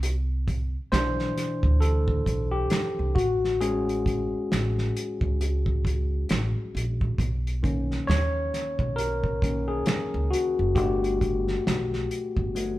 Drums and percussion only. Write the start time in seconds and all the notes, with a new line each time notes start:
0.03 closed hi-hat
0.48 kick, closed hi-hat
0.93 finger snap, snare, closed hi-hat
1.19 snare
1.37 snare, closed hi-hat
1.63 kick
1.82 closed hi-hat
2.08 kick
2.26 kick, closed hi-hat
2.70 finger snap, snare, closed hi-hat
3.16 kick, closed hi-hat
3.45 snare
3.61 closed hi-hat
3.89 closed hi-hat
4.06 kick, closed hi-hat
4.52 finger snap, snare, closed hi-hat
4.78 snare
4.97 closed hi-hat
5.21 kick
5.41 closed hi-hat
5.66 kick
5.85 kick, closed hi-hat
6.29 finger snap, snare, closed hi-hat
6.77 closed hi-hat
7.01 kick
7.18 kick, closed hi-hat
7.47 closed hi-hat
7.64 kick, closed hi-hat
7.91 snare
8.10 finger snap, snare, closed hi-hat
8.54 snare, closed hi-hat
8.79 kick
8.98 closed hi-hat
9.24 kick
9.42 kick, closed hi-hat
9.86 finger snap, snare, closed hi-hat
10.33 closed hi-hat
10.76 kick, closed hi-hat
11.04 closed hi-hat
11.21 kick, closed hi-hat
11.48 snare
11.67 finger snap, snare, closed hi-hat
11.93 snare
12.11 closed hi-hat
12.37 kick
12.56 closed hi-hat